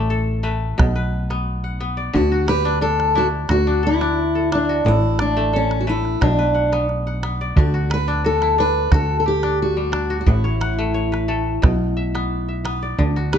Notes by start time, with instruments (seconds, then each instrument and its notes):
Already playing: analog synth bass A1, kora A2 A3 F#4 C#5 D5
0.10 kora A4
0.43 kora A3 B4
0.78 analog synth bass B1, kora B2, calabash thump, calabash click
0.96 kora B4
1.30 kora B3, calabash click
1.64 kora F#5
1.80 kora B3
1.97 kora D5
2.13 analog synth bass D2, kora D3, steel-string acoustic guitar F#4, calabash thump
2.32 kora F#4, calabash click
2.48 kora G4, steel-string acoustic guitar B4, calabash click
2.65 kora D4
2.81 kora D4, steel-string acoustic guitar A4
3.00 calabash click
3.15 kora D4 E4, steel-string acoustic guitar F#4
3.49 analog synth bass D2, kora F#4, steel-string acoustic guitar F#4, calabash thump, calabash click
3.67 kora D4
3.83 steel-string acoustic guitar E4, kora A4
4.01 kora D4, calabash click
4.35 kora A4
4.52 kora D4, steel-string acoustic guitar D4, calabash click
4.69 kora F#4
4.85 analog synth bass A1, kora A2, steel-string acoustic guitar E4, calabash thump
5.19 steel-string acoustic guitar D4, kora D5, calabash click
5.37 kora A3
5.53 steel-string acoustic guitar C#4, kora A4, calabash click
5.71 calabash click
5.81 steel-string acoustic guitar F#4
5.87 kora A3 B4, steel-string acoustic guitar E4
6.05 calabash click
6.21 analog synth bass B1, kora B2, steel-string acoustic guitar D4, calabash thump, calabash click
6.39 kora B4
6.55 kora F#5, calabash click
6.72 kora B3, calabash click
6.89 calabash click
7.07 kora F#5, calabash click
7.23 kora B3, calabash click
7.41 kora D5
7.56 analog synth bass D2, kora D3, steel-string acoustic guitar F#4, calabash thump
7.74 kora F#4, calabash click
7.90 kora B4, steel-string acoustic guitar B4, calabash click
8.08 kora D4
8.24 kora F#4, steel-string acoustic guitar A4
8.42 kora E4, calabash click
8.58 kora D4, steel-string acoustic guitar B4
8.92 analog synth bass D2, kora F#4, steel-string acoustic guitar A4, calabash thump, calabash click
9.20 steel-string acoustic guitar A4
9.26 kora G4, steel-string acoustic guitar G4
9.43 kora D4, calabash click
9.62 steel-string acoustic guitar F#4
9.77 kora G3
9.92 kora D4, calabash click
10.10 kora F#4
10.21 steel-string acoustic guitar F#4
10.27 analog synth bass A1, kora A2, steel-string acoustic guitar E4, calabash thump
10.44 kora C#5, calabash click
10.61 kora F#5, calabash click
10.79 kora A3
10.94 kora C#5
11.12 kora B4, calabash click
11.28 kora A3 A4
11.62 analog synth bass B1, kora B2, calabash thump, calabash click
11.97 kora E5
12.15 kora B3, calabash click
12.48 kora E5
12.65 kora B3, calabash click
12.83 kora D5
12.99 analog synth bass D2, kora D3, calabash thump
13.16 kora F#4, calabash click
13.33 steel-string acoustic guitar G4, kora B4, calabash click